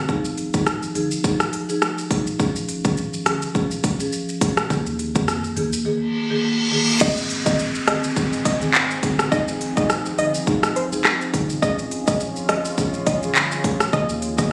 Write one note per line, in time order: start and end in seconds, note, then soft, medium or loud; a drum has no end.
0.09 0.50 F1 loud
0.09 0.28 F3 medium
0.09 0.28 D#4 medium
0.09 0.28 G#4 loud
0.09 kick loud
0.09 shaker medium
0.25 shaker medium
0.38 closed hi-hat medium
0.38 shaker soft
0.54 0.80 G#1 medium
0.54 0.70 F3 medium
0.54 0.70 D#4 medium
0.54 0.70 G#4 medium
0.54 kick medium
0.54 shaker medium
0.67 cross-stick medium
0.67 shaker medium
0.83 shaker soft
0.95 1.10 G1 loud
0.95 1.14 F3 medium
0.95 1.14 D#4 medium
0.95 1.14 G#4 medium
0.95 closed hi-hat medium
0.95 shaker soft
1.11 shaker medium
1.24 1.50 F1 loud
1.24 1.65 F3 medium
1.24 1.65 D#4 medium
1.24 1.65 G#4 loud
1.24 kick medium
1.24 shaker medium
1.40 cross-stick medium
1.40 shaker medium
1.53 closed hi-hat medium
1.53 shaker medium
1.69 1.85 F3 medium
1.69 1.85 D#4 medium
1.69 1.86 G#4 medium
1.69 shaker medium
1.82 cross-stick loud
1.82 shaker medium
1.98 shaker medium
2.10 2.29 F3 medium
2.10 2.30 D#4 medium
2.10 2.30 G#4 medium
2.10 kick medium
2.10 closed hi-hat medium
2.10 shaker medium
2.27 shaker medium
2.39 2.86 F1 loud
2.39 2.58 F3 medium
2.39 2.58 C#4 medium
2.39 2.58 G#4 loud
2.39 kick loud
2.39 shaker medium
2.56 shaker medium
2.69 closed hi-hat medium
2.69 shaker soft
2.85 3.11 G#1 medium
2.85 3.01 F3 medium
2.85 3.01 C#4 medium
2.85 3.01 G#4 medium
2.85 kick medium
2.85 shaker medium
2.97 shaker medium
3.14 shaker soft
3.26 3.41 G1 medium
3.26 3.45 F3 medium
3.26 3.45 C#4 medium
3.26 3.45 G#4 medium
3.26 cross-stick loud
3.26 closed hi-hat medium
3.26 shaker soft
3.42 shaker medium
3.55 3.96 F3 medium
3.55 3.96 C#4 medium
3.55 3.96 G#4 loud
3.55 kick medium
3.55 shaker medium
3.71 shaker medium
3.84 kick medium
3.84 closed hi-hat medium
3.84 shaker medium
4.00 4.16 F3 medium
4.00 4.16 C#4 medium
4.00 4.16 G#4 medium
4.00 shaker medium
4.12 shaker medium
4.29 shaker medium
4.41 4.68 F1 loud
4.41 4.60 F3 medium
4.41 4.60 C#4 medium
4.41 4.61 G#4 medium
4.41 kick medium
4.41 closed hi-hat medium
4.41 shaker medium
4.57 cross-stick loud
4.57 shaker medium
4.70 5.11 D#2 loud
4.70 4.89 D#3 medium
4.70 4.89 A#3 medium
4.70 4.89 G#4 loud
4.70 kick loud
4.70 shaker medium
4.86 shaker medium
4.99 closed hi-hat medium
4.99 shaker soft
5.15 5.42 F2 loud
5.15 5.31 D#3 medium
5.15 5.31 A#3 medium
5.15 5.32 G#4 medium
5.15 kick medium
5.15 shaker medium
5.28 cross-stick medium
5.28 shaker medium
5.44 shaker soft
5.56 5.71 D#2 medium
5.56 5.76 D#3 medium
5.56 5.76 A#3 medium
5.56 5.76 G#4 medium
5.56 closed hi-hat medium
5.56 shaker soft
5.73 shaker medium
5.85 6.27 D#3 medium
5.85 6.27 A#3 medium
5.85 6.27 G#4 loud
5.85 reverse cymbal medium
6.30 6.47 D#3 medium
6.30 6.47 A#3 medium
6.30 6.47 G#4 medium
6.72 6.91 D#3 medium
6.72 6.91 A#3 medium
6.72 6.91 G#4 medium
7.00 7.42 G#1 loud
7.00 7.20 D#3 loud
7.00 7.20 C4 medium
7.00 11.59 C4 medium
7.00 11.59 D#4 medium
7.00 7.20 G#4 loud
7.00 11.59 G#4 medium
7.00 7.12 D#5 medium
7.00 kick loud
7.00 crash loud
7.00 downlifter medium
7.00 shaker medium
7.17 shaker medium
7.30 closed hi-hat medium
7.30 shaker soft
7.46 7.72 G#1 loud
7.46 7.62 D#3 medium
7.46 7.62 C4 medium
7.46 7.62 G#4 medium
7.46 7.54 D#5 medium
7.46 kick medium
7.46 shaker medium
7.59 shaker medium
7.75 shaker medium
7.87 8.02 G1 loud
7.87 8.06 D#3 medium
7.87 8.07 C4 medium
7.87 8.07 G#4 medium
7.87 7.98 D#5 medium
7.87 cross-stick loud
7.87 closed hi-hat medium
7.87 shaker medium
8.04 shaker medium
8.16 8.57 G#1 loud
8.16 8.57 D#3 medium
8.16 8.57 C4 medium
8.16 8.58 G#4 loud
8.16 kick medium
8.16 shaker medium
8.33 shaker medium
8.45 8.56 D#5 medium
8.45 kick medium
8.45 closed hi-hat medium
8.45 shaker medium
8.61 8.99 G#1 loud
8.61 8.77 D#3 medium
8.61 8.78 C4 medium
8.61 8.78 G#4 medium
8.61 shaker medium
8.74 clap loud
8.74 shaker medium
8.91 shaker medium
9.02 9.29 G1 medium
9.02 9.22 D#3 medium
9.02 9.22 C4 medium
9.02 9.22 G#4 medium
9.02 kick medium
9.02 closed hi-hat medium
9.02 shaker medium
9.19 cross-stick loud
9.19 shaker medium
9.31 9.73 F1 loud
9.31 9.50 F3 medium
9.31 13.89 F3 medium
9.31 9.50 D#4 medium
9.31 9.51 G#4 loud
9.31 9.42 D#5 loud
9.31 kick loud
9.31 shaker medium
9.48 shaker medium
9.61 closed hi-hat medium
9.61 shaker soft
9.76 10.03 F1 loud
9.76 9.93 F3 medium
9.76 9.93 D#4 medium
9.76 9.93 G#4 medium
9.76 9.85 D#5 medium
9.76 kick medium
9.76 shaker medium
9.90 cross-stick medium
9.90 shaker medium
10.06 shaker medium
10.18 10.33 G1 medium
10.18 10.37 F3 medium
10.18 10.37 D#4 medium
10.18 10.37 G#4 medium
10.18 10.29 D#5 medium
10.18 closed hi-hat medium
10.18 shaker soft
10.34 shaker medium
10.47 10.88 F1 loud
10.47 10.88 F3 medium
10.47 10.88 D#4 medium
10.47 10.88 G#4 loud
10.47 kick medium
10.47 shaker medium
10.63 cross-stick loud
10.63 shaker medium
10.76 10.87 C5 medium
10.76 closed hi-hat medium
10.76 shaker medium
10.92 11.04 F1 medium
10.92 11.08 F3 medium
10.92 11.08 D#4 medium
10.92 11.09 G#4 medium
10.92 shaker medium
11.05 cross-stick loud
11.05 clap loud
11.05 shaker medium
11.21 shaker medium
11.33 11.60 G1 loud
11.33 11.52 F3 medium
11.33 11.52 D#4 medium
11.33 11.53 G#4 medium
11.33 kick loud
11.33 closed hi-hat medium
11.33 shaker medium
11.50 shaker medium
11.62 12.04 F1 loud
11.62 11.81 F3 loud
11.62 11.81 C#4 medium
11.62 13.91 F4 medium
11.62 14.52 G#4 medium
11.62 11.82 G#4 loud
11.62 13.91 C#5 medium
11.62 11.73 D#5 loud
11.62 kick loud
11.62 shaker medium
11.79 shaker medium
11.91 closed hi-hat medium
11.91 shaker soft
12.07 12.34 F1 loud
12.07 12.24 F3 medium
12.07 12.24 C#4 medium
12.07 12.24 G#4 medium
12.07 12.16 D#5 medium
12.07 kick loud
12.07 shaker medium
12.20 shaker medium
12.36 shaker medium
12.49 12.64 F1 loud
12.49 12.68 F3 medium
12.49 12.68 C#4 medium
12.49 12.68 G#4 medium
12.49 12.60 D#5 medium
12.49 cross-stick loud
12.49 closed hi-hat medium
12.49 shaker medium
12.65 shaker medium
12.78 13.24 F1 loud
12.78 13.19 F3 medium
12.78 13.19 C#4 medium
12.78 13.19 G#4 loud
12.78 kick medium
12.78 shaker medium
12.94 shaker medium
13.06 13.17 D#5 medium
13.06 kick medium
13.06 closed hi-hat medium
13.06 shaker medium
13.22 13.60 G1 medium
13.22 13.39 F3 medium
13.22 13.39 C#4 medium
13.22 13.40 G#4 medium
13.22 shaker medium
13.36 clap loud
13.36 shaker medium
13.52 shaker medium
13.64 13.91 F1 medium
13.64 13.83 F3 medium
13.64 13.83 C#4 medium
13.64 13.84 G#4 medium
13.64 kick loud
13.64 closed hi-hat medium
13.64 shaker medium
13.80 cross-stick loud
13.80 shaker medium
13.93 14.34 D#2 loud
13.93 14.12 D#3 loud
13.93 14.52 D#3 medium
13.93 14.12 A#3 medium
13.93 14.52 D#4 medium
13.93 14.12 G#4 loud
13.93 14.52 A#4 medium
13.93 14.04 D#5 loud
13.93 kick loud
13.93 shaker medium
14.09 shaker medium
14.22 closed hi-hat medium
14.22 shaker soft
14.38 14.52 D#2 loud
14.38 14.52 D#3 medium
14.38 14.52 A#3 medium
14.38 14.52 G#4 medium
14.38 14.47 D#5 medium
14.38 kick loud
14.38 shaker medium